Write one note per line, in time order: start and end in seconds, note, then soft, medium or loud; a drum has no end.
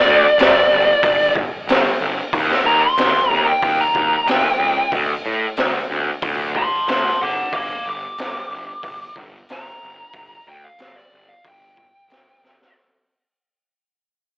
0.00 1.32 D5 loud
0.05 0.25 D2 medium
0.38 0.58 G1 medium
0.38 snare loud
0.38 open hi-hat medium
0.71 0.91 G1 medium
1.03 1.43 G1 medium
1.03 kick loud
1.03 open hi-hat medium
1.36 kick medium
1.68 1.88 G1 medium
1.68 snare loud
1.68 open hi-hat medium
2.01 2.21 G1 medium
2.33 2.53 D#2 medium
2.33 kick medium
2.33 open hi-hat soft
2.51 snare soft
2.64 2.85 D#2 medium
2.64 2.82 A#5 medium
2.82 3.30 C6 medium
2.97 3.18 D#2 medium
2.97 snare loud
2.97 open hi-hat medium
3.30 3.50 D#2 medium
3.30 3.45 A#5 medium
3.47 3.78 G5 medium
3.62 3.83 D#2 medium
3.62 kick loud
3.62 open hi-hat medium
3.81 4.27 A#5 medium
3.95 4.15 D#2 medium
3.95 kick medium
4.27 4.47 D#2 medium
4.27 4.91 G5 loud
4.27 snare loud
4.27 open hi-hat medium
4.59 4.79 C#2 medium
4.92 5.12 D2 medium
4.92 kick medium
4.92 open hi-hat soft
5.26 5.46 A2 medium
5.57 5.78 D2 medium
5.57 snare loud
5.57 open hi-hat soft
5.90 6.10 D2 medium
6.22 6.63 D2 medium
6.22 kick loud
6.22 open hi-hat medium
6.55 6.87 A5 medium
6.55 6.88 C6 medium
6.55 kick medium
6.88 7.08 D2 medium
6.88 7.19 A5 medium
6.88 7.21 C6 medium
6.88 snare loud
6.88 open hi-hat medium
7.22 7.41 F#1 medium
7.22 7.52 F#5 medium
7.22 7.54 D6 loud
7.53 7.73 G1 medium
7.53 7.85 F5 medium
7.53 7.87 D6 medium
7.53 kick loud
7.53 open hi-hat soft
7.86 8.06 G1 medium
7.86 9.14 D6 medium
8.18 8.39 G1 loud
8.18 snare loud
8.18 open hi-hat medium
8.50 8.70 G1 medium
8.83 9.03 G1 medium
8.83 kick loud
8.83 open hi-hat medium
9.16 9.36 G1 medium
9.16 kick medium
9.49 9.70 G1 medium
9.49 10.46 A#5 loud
9.49 snare loud
9.49 open hi-hat medium
9.83 10.03 G1 medium
10.13 10.34 G1 loud
10.13 kick loud
10.13 open hi-hat medium
10.47 10.67 D2 medium
10.47 10.64 G5 medium
10.65 10.96 F5 medium
10.78 10.99 G1 loud
10.78 snare loud
10.78 open hi-hat medium
10.96 11.28 D5 medium
11.12 11.32 G1 medium
11.29 11.45 F5 medium
11.44 11.85 G1 medium
11.44 kick loud
11.44 open hi-hat medium
11.48 12.74 G5 loud
11.77 kick medium
12.09 12.29 G1 medium
12.09 snare loud
12.09 open hi-hat medium
12.42 12.62 G1 medium
12.42 snare medium
12.61 snare medium